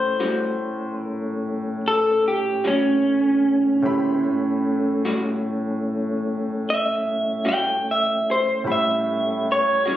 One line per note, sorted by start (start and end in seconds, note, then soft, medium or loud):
0.00 3.78 A2 medium
0.00 3.79 A2 medium
0.00 3.79 A3 medium
0.00 3.79 C#4 medium
0.00 3.79 C#4 soft
0.00 3.80 G4 soft
0.00 1.01 C5 medium
0.00 3.79 F#5 medium
0.00 3.80 B5 medium
0.20 0.45 A2 soft
0.20 0.45 G3 soft
0.20 0.45 C#4 medium
0.20 0.45 F#4 medium
1.01 1.80 A#4 medium
1.88 2.24 A4 medium
2.28 2.64 G4 medium
2.64 2.88 A2 medium
2.64 2.88 G3 medium
2.64 2.88 C#4 medium
2.64 5.03 C#4 medium
2.64 2.88 F#4 medium
3.82 8.62 A2 medium
3.82 4.23 D3 medium
3.82 4.23 G#3 medium
3.82 4.24 A#3 medium
3.82 8.62 C#4 soft
3.82 8.62 E4 medium
3.82 4.24 G4 medium
3.82 8.63 G4 medium
3.82 4.24 C5 medium
3.82 8.64 B5 medium
4.24 8.63 A2 medium
4.24 8.63 A3 medium
4.24 8.63 C#4 medium
5.05 5.29 A2 medium
5.05 5.29 G3 medium
5.05 5.29 C#4 medium
5.05 5.29 F#4 medium
6.70 7.46 E5 medium
7.45 7.70 A2 soft
7.45 7.70 G3 medium
7.45 7.70 C#4 medium
7.45 7.69 F#4 medium
7.45 7.86 G5 medium
7.91 8.28 E5 medium
8.31 8.68 C5 medium
8.64 9.97 A2 soft
8.64 9.97 A2 medium
8.64 9.97 G3 medium
8.64 9.97 A3 medium
8.64 9.97 C#4 medium
8.64 9.97 C#4 soft
8.64 9.97 G4 soft
8.64 9.97 F#5 soft
8.64 9.97 B5 medium
8.72 9.47 E5 medium
9.52 9.97 C#5 medium
9.86 9.97 A2 soft
9.86 9.97 G3 soft
9.86 9.97 C#4 medium
9.86 9.97 F#4 medium